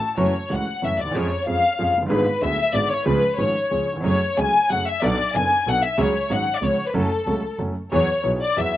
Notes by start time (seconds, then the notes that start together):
Already playing: A5
0.17 F#1 F#2 E3 F#3 A3 C#4 F#4 C#5
0.50 C#2 C#3 E3 A3 C#4 F#4 F#5
0.82 F#1 F#2 E3 F#3 A3 C#4 F#4 E5
0.99 D2 D#2 D5
1.06 D#2
1.11 E2 F2 F3 G#3 C#4
1.15 F2 G#4 C#5
1.47 F2 F3 G#3 C#4 G#4 F5
1.79 F2 F3 G#3 C#4 G#4
1.96 F1 F#1
2.02 F#1
2.06 G1 G#1 G#2 D3 B3 B4
2.10 G#1 G#3 G#4
2.41 D1 D2 D3 G#3 B3 G#4 E5
2.74 G#1 G#2 D3 G#3 B3 G#4 D5
2.90 C#5
3.06 C#2 C#3 F3 G#3 C#4 G#4 B4
3.38 G#1 G#2 F3 G#3 C#4 G#4 C#5
3.71 C#2 C#3 F3 G#3 C#4 G#4
3.93 D#2 E2
4.00 F#1 F2 F#2 F#3 A3 C#4 G#4
4.04 C#5
4.37 C#2 C#3 F#3 A3 C#4 G#4 G#5
4.69 F#1 F#2 F#3 A3 C#4 G#4 F#5
4.87 E5
5.02 B1 B2 F#3 B3 D4 A4 D5
5.34 F#1 F#2 F#3 B3 D4 A4 G#5
5.67 B1 B2 F#3 B3 D4 A4 F#5
5.84 E5
5.97 C#2 C#3 F#3 G#3 C#4 G#4 C#5
6.30 G#1 G#2 F#3 G#3 C#4 G#4 F#5
6.55 D5
6.62 C#2 C#3 F3 G#3 C#4 G#4 C#5
6.88 B4
6.94 F#1 F#2 F#3 A3 C#4 A4
7.26 C#2 C#3 F#3 A3 C#4 A4
7.58 F#1 F#2 F#3 A3 C#4 A4
7.92 E2 E3 F#3 B3 E4 G#4 C#5
8.23 B1 B2 F#3 B3 E4 G#4
8.41 D5
8.56 E2 E3 F#3 B3 E4 G#4 E5